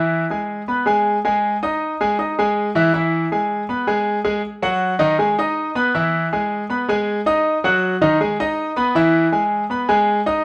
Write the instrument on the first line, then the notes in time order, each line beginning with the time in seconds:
grand piano
Already playing: E3 E4 E5
0.30 G#3 G#4 G#5
0.68 B3 B4 B5
0.86 G#3 G#4 G#5
1.25 G#3 G#4 G#5
1.63 D#4 D#5 D#6
2.01 G#3 G#4 G#5
2.19 D#4 D#5 D#6
2.39 G#3 G#4 G#5
2.75 E3 E4 E5
2.94 E3 E4 E5
3.32 G#3 G#4 G#5
3.69 B3 B4 B5
3.87 G#3 G#4 G#5
4.25 G#3 G#4 G#5
4.62 F#3 F#4 F#5
4.99 D#3 D#4 D#5
5.19 G#3 G#4 G#5
5.38 D#4 D#5 D#6
5.75 B3 B4 B5
5.95 E3 E4 E5
6.33 G#3 G#4 G#5
6.70 B3 B4 B5
6.89 G#3 G#4 G#5
7.26 D#4 D#5 D#6
7.64 F#3 F#4 F#5
8.01 D#3 D#4 D#5
8.20 G#3 G#4 G#5
8.40 D#4 D#5 D#6
8.76 B3 B4 B5
8.95 E3 E4 E5
9.32 G#3 G#4 G#5
9.70 B3 B4 B5
9.89 G#3 G#4 G#5
10.26 D#4 D#5 D#6